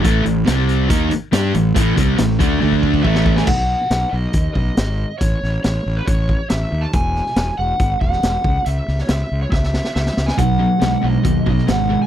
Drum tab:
CC |----------------|----------------|x---------------|----------------|
HH |x-x-x-x-x-x-x-x-|x-x-x-x---------|----x---x---x---|x---x---x---x---|
SD |----oo------o---|----oo-------o-o|----o-------o---|--o-o-------o---|
BD |o-------o-------|o-o---o-ooooo-o-|o-------o-o-----|o-------o-o-----|

CC |----------------|----------------|----------------|
HH |x---x---x---x---|x---x-----------|x---x---x---x---|
SD |--ooo------oo---|--ooo---oooooooo|----o------oo---|
BD |o-------o-o---o-|--------o-------|o-------o-o-----|